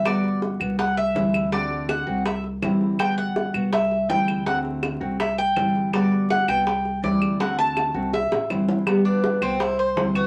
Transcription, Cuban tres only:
X:1
M:4/4
L:1/8
Q:1/4=163
K:G
V:1 name="Cuban tres"
d2 z2 f e3 | d2 f2 e z3 | g f3 e2 g2 | f z3 e g3 |
d2 f g3 d2 | f a3 e2 z2 | z D2 C E c2 F |]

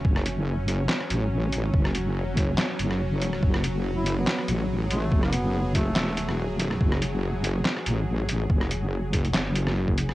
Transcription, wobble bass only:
X:1
M:4/4
L:1/8
Q:"Swing 16ths" 1/4=142
K:F#m
V:1 name="Wobble bass" clef=bass
F,,,4 z A,,,3 | F,,,4 z F,,,3 | F,,,4 z A,,,3 | F,,,4 E,,,4 |
F,,,4 z A,,,3 | F,,,4 F,,,4 |]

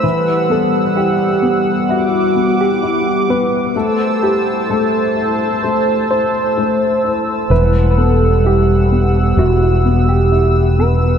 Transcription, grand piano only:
X:1
M:4/4
L:1/8
Q:1/4=64
K:Em
V:1 name="Grand piano"
E, B, E B, E B, E B, | A, E A, E A, E A, E | E, B, E B, E B, E B, |]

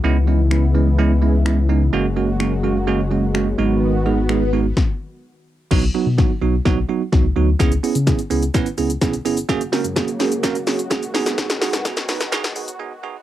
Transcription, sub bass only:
X:1
M:4/4
L:1/16
Q:1/4=127
K:B
V:1 name="Sub bass" clef=bass
C,,16 | F,,,12- F,,,2 G,,,2- | G,,,8 z8 | B,,,2 z B,,2 z B,,,2 B,,,2 z2 C,,2 =D,,2 |
C,,2 z C,2 z C,,2 z2 C,,2 B,,,2 =G,,,2 | F,,,2 z F,,2 z F,,,2 F,,,2 z2 A,,,2 G,,,2 | G,,,2 z G,,2 z F,,2 G,,2 G,,,2 z4 |]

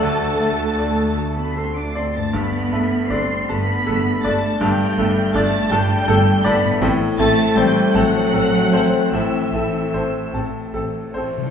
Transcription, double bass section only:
X:1
M:6/8
L:1/16
Q:3/8=52
K:G
V:1 name="Double bass section" clef=bass
D,,8- D,,3 z | G,,,2 G,,,2 G,,,2 G,,,2 G,,,2 G,,,2 | G,,,2 G,,,2 G,,,2 G,,,2 G,,,2 G,,,2 | A,,,2 A,,,2 A,,,2 A,,,2 A,,,2 A,,,2 |
A,,,2 A,,,2 A,,,2 A,,,2 A,,,2 A,,,2 |]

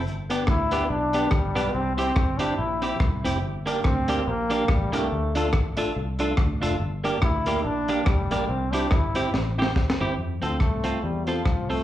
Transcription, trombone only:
X:1
M:4/4
L:1/8
Q:"Swing" 1/4=142
K:F
V:1 name="Trombone"
z2 E2 D2 G,2 | C C2 D E2 z2 | z2 C2 B,2 G, A,- | A, z6 z |
z2 E2 D2 G,2 | C D E2 z4 | z C A,2 G, F,2 A, |]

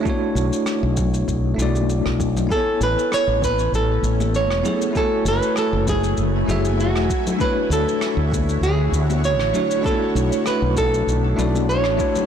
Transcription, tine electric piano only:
X:1
M:4/4
L:1/8
Q:"Swing 16ths" 1/4=98
K:Bdor
V:1 name="Tine electric piano"
[A,DEFc]4- [A,DEFc] [A,DEFd]3 | [B,EAcg]6- [B,EAcg] [B,EGAc] | [A,EFcg]4- [A,EFcg] [A,EFGe]2 z | [A,DEFc]6- [A,DEFc] [A,DEFc] |
[A,DEFc]4- [A,DEFc] [A,DEFd]2 [A,DEFc] |]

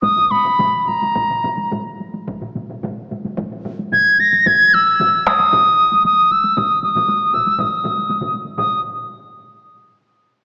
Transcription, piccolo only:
X:1
M:4/4
L:1/16
Q:1/4=114
K:none
V:1 name="Piccolo"
_e'2 _c'3- c'/2 c'/2 _b6 z4 | z12 _a'2 _b'2 | _a'2 _f'4 _e'6 e'2 f'2 | _e'2 e'4 _f'2 e'6 z2 |
_e'2 z12 z2 |]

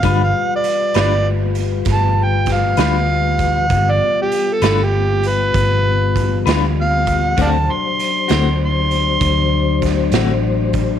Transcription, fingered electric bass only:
X:1
M:12/8
L:1/8
Q:3/8=65
K:G
V:1 name="Fingered electric bass" clef=bass
G,,, z2 G,,,3 G,,,3 D,,3 | G,,, z2 G,,,3 G,,,3 D,,3 | D,, z2 D,,3 D,,3 A,,,3 |]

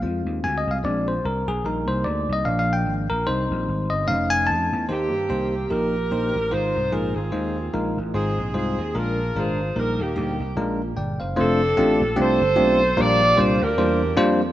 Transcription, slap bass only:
X:1
M:4/4
L:1/8
Q:"Swing" 1/4=148
K:Eb
V:1 name="Slap bass" clef=bass
F,, E,, D,, C,, B,,,2 C,, _C,, | B,,, C,, D,, C,, B,,,2 A,,, B,,, | C,, B,,, A,,, G,,, F,,,2 F,, _F,, | E,, G,, C,,2 B,,,2 B,,, =A,,, |
A,,, C,, B,,, A,,, E,,2 B,,, =A,,, | A,,, B,,, C,, E,, B,,,2 A,,,2 | B,,, E,, D,, C,, B,,,2 G,,, _G,,, | [K:F] F,,,2 A,,, B,,, C,, G,,, =B,,,2 |
B,,,2 C,, D,, E,,2 F,,2 |]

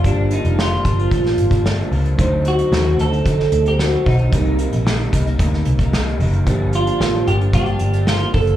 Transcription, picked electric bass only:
X:1
M:4/4
L:1/16
Q:1/4=112
K:Gm
V:1 name="Picked electric bass" clef=bass
G,,,3 F,,,3 G,,,2 A,,,2 G,,,4 ^C,,2 | D,,4 E,,2 D,,2 D,2 D,,4 =B,,,2 | C,,3 B,,,3 C,,2 D,,2 C,,4 ^F,,,2 | G,,,4 A,,,2 G,,,2 G,,2 G,,,4 ^F,,,2 |]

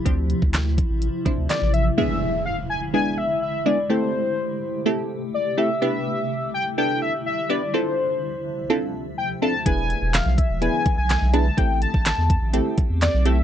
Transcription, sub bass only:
X:1
M:4/4
L:1/16
Q:1/4=125
K:Ephr
V:1 name="Sub bass" clef=bass
D,,3 D,,4 A,,,2 z2 D,, z A,,,3 | z16 | z16 | z16 |
z16 | E,,,3 E,,,2 B,,,2 E,,,2 z2 B,,,2 B,,,3 | A,,,3 A,,,2 E,,2 A,,,2 z2 E,,2 B,,,3 |]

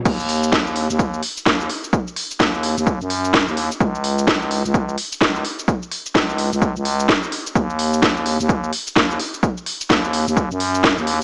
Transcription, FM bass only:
X:1
M:4/4
L:1/16
Q:"Swing 16ths" 1/4=128
K:Ebm
V:1 name="FM bass" clef=bass
E,,4 E,,3 E,,3 z2 E,,2 z2 | z4 E,,3 E,,2 G,,4 E,,2 z | D,,4 D,,3 D,,3 z2 D,,2 z2 | z4 D,,3 D,,2 D,,3 z4 |
E,,4 E,,3 E,,3 z2 E,,2 z2 | z4 E,,3 E,,2 G,,4 E,,2 z |]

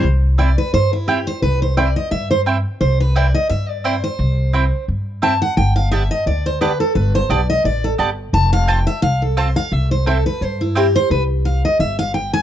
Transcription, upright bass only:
X:1
M:4/4
L:1/8
Q:"Swing" 1/4=174
K:C
V:1 name="Upright bass" clef=bass
C,,4 G,,4 | C,,4 G,,4 | C,,4 G,,4 | C,,4 G,,4 |
G,,,4 D,,4 | G,,,2 B,,,2 A,,,2 G,,,2 | F,,,4 C,,4 | C,,4 G,,4 |
C,,4 G,,,4 |]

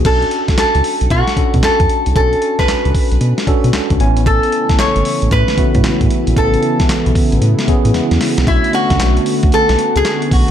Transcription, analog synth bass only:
X:1
M:4/4
L:1/16
Q:"Swing 16ths" 1/4=114
K:Bdor
V:1 name="Analog synth bass" clef=bass
B,,,2 z C,, C,, C,, z B,,, B,, z B,, B,, E,, E,, z =C,, | B,,,2 z C,, C,, C,, z B,,, B,, z B,, B,, C,, C,, A,,,2- | A,,,2 z G,,, G,,, G,,, z A,,, A,, z A,, A,, A,, A,, z _B,,, | A,,,2 z B,,, B,,, B,,, z A,,, A,, z A,, A,, E,, E,, z =C,, |
B,,, z2 C,, B,,,2 z D,, B,,, B,,, z C,, z2 B,,, z |]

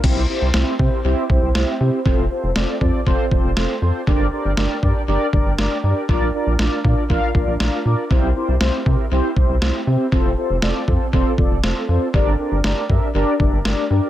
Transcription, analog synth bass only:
X:1
M:4/4
L:1/16
Q:1/4=119
K:F
V:1 name="Analog synth bass" clef=bass
C,, C,, z C,, C,, z C, z C,, z C,, C,, C,, z C, z | F,,, F,,, z F,,, F,,, z F,, z F,,, z F,,, F,,, F,,, z F,, z | G,,, G,,, z G,,, G,,, z G,, z G,,, z G,,, G,,, G,,, z G,, z | B,,, B,,, z B,,, B,,, z B,, z B,,, z B,,, B,,, B,,, z B,, z |
C,, C,, z C,, C,, z C, z C,, z C,, C,, C,, z C, z | F,,, F,,, z F,,, F,,, z F,, z F,,, z F,,, F,,, F,,, z F,, z | G,,, G,,, z G,,, G,,, z G,, z G,,, z G,,, G,,, G,,, z G,, z |]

